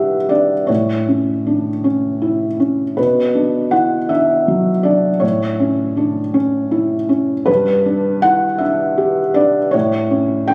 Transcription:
Already playing: G2 D4 E4 G4 B4 E5 F#5
0.29 D4 D5
0.67 A2 C#5
1.08 C#4
1.47 D4
1.84 C#4
2.22 E4
2.60 C#4
2.97 B2 B4
3.35 D4
3.71 E4 F#5
4.09 D4 E5
4.48 F#3
4.83 D4 D5
5.20 A2 C#5
5.60 C#4
5.97 D4
6.34 C#4
6.71 E4
7.09 C#4
7.46 G2 B4
7.86 D4
8.22 E4 F#5
8.58 D4 E5
8.98 G4
9.34 D4 D5
9.71 A2 C#5
10.11 C#4
10.48 D4 G5

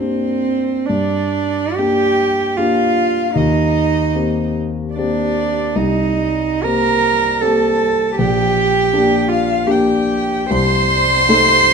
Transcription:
Already playing: G2 A#3 C4 D4
0.00 G4 C5
0.86 G2 D4 D5
1.76 A#3 D4 G4 G5
2.57 A#3 D4 F4 G4 F5
3.34 D#2 D#4 D#5
4.14 A#3 C4 G4
4.94 D4 D5
4.98 A#3 C4 G4
5.75 C2 D#4 D#5
6.63 A#3 C4 G4 A#4 A#5
7.42 A#3 C4 G4 A4 A5
8.16 A#1 G4
8.20 G5
8.93 A#3 D4 G4
9.28 F4 F5
9.66 A#3 D4 G4
9.70 G5
10.51 C2 C5 C6
11.29 A3 D#4 A4

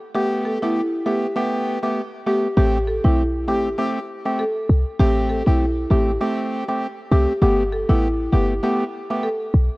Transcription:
0.14 A3 B3 G4
0.45 A4
0.62 A3 B3 E4 G4
1.06 A3 B3 G4
1.36 A3 B3 G4
1.83 A3 B3 G4
2.26 A3 B3 G4
2.57 A1 A3 C4 G4
2.87 A4
3.04 B1 A3 C4 E4 G4
3.48 A1 A3 C4 G4
3.78 A3 C4 G4
4.25 A3 C4 G4
4.39 A4
4.69 C2
5.00 A1 A3 C4 G4
5.30 A4
5.46 B1 A3 C4 E4 G4
5.90 A1 A3 C4 G4
6.21 A3 C4 G4
6.68 A3 C4 G4
7.11 C2 A3 C4 G4
7.42 G1 A3 B3 G4
7.72 A4
7.89 A1 A3 B3 E4 G4
8.32 G1 A3 B3 G4
8.63 A3 B3 G4
9.10 A3 B3 G4
9.23 A4
9.54 B1

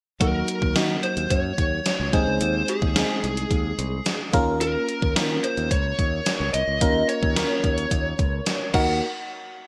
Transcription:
0.20 D#2 F#3 A#3 D#4 F#4 A#4, kick, closed hi-hat
0.48 closed hi-hat
0.62 D#2, kick
0.75 D#3 F#3 A#3 D#4 F#4, snare, closed hi-hat
1.03 C5, closed hi-hat
1.17 D#2, closed hi-hat
1.30 F#2 C#5, kick, closed hi-hat
1.58 D#2, kick, closed hi-hat
1.86 snare, closed hi-hat
2.00 C#2
2.13 D#2 G#3 C4 D#4 G#4 C5, kick, closed hi-hat
2.27 C#2
2.41 D#2, closed hi-hat
2.68 G#4, closed hi-hat
2.82 D#2, kick
2.95 G#3 C4 D#4 G#4, snare, closed hi-hat
3.24 C2, closed hi-hat
3.37 closed hi-hat
3.51 D#2, kick, closed hi-hat
3.79 C2, closed hi-hat
4.06 snare, closed hi-hat
4.33 D#2 A#3 C#4 F4 A#4, kick, closed hi-hat
4.61 A#4, closed hi-hat
4.89 closed hi-hat
5.02 D#2, kick
5.15 D#3 A#3 C#4 F4 A#4, snare, closed hi-hat
5.44 C5, closed hi-hat
5.57 D#2, closed hi-hat
5.71 C#2 C#5, kick, closed hi-hat
5.99 D#2, kick, closed hi-hat
6.26 snare, closed hi-hat
6.40 C#2
6.54 C2 D#5, closed hi-hat
6.68 C#2
6.81 D#2 A#3 C#4 F4 A#4, kick, closed hi-hat
7.09 C#5, closed hi-hat
7.23 D#2, kick
7.36 A#3 C#4 F4 A#4, snare, closed hi-hat
7.64 D#2, kick, closed hi-hat
7.78 closed hi-hat
7.91 D#2, kick, closed hi-hat
8.19 C#2, kick, closed hi-hat
8.46 snare, closed hi-hat
8.74 D#2 A#3 D#4 F#4 A#4 F#5, kick, crash

